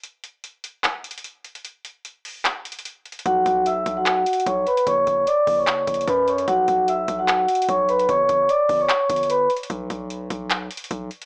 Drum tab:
HH |x-----x-----x-----x-----x-----x-x-x-x-----x--x--|x-----x-----x-----o-----x-----x-x-x-x-----x-x-x-|x-----x-----x-----x-----x-----x-x-x-x-----x--x--|x-----x-----x-----o-----x-----x-x-x-x-----x--x--|
CP |------------------------x-----------------------|------------------------x-----------------------|------------------------x-----------------------|------------------------x-----------------------|
BD |------------------------------------------------|------------------------------------------------|o-----o-----------o-----------------o-----------|o-----o-----------o-----------o-----o-----------|

HH |x-----x-----x-----x-----x-----x-x-x-x-----x--x--|x-----x-----x-----o-----x-----x-x-x-x-----x-x-x-|x-----x-----x-----x-----x-----x-x-x-x-----x--x--|
CP |------------------------x-----------------------|------------------------x-----------------------|------------------------x-----------------------|
BD |o-----o-----------o-----------------o-----------|o-----o-----------o-----------o-----------------|o-----o-----------o-----------------o-----------|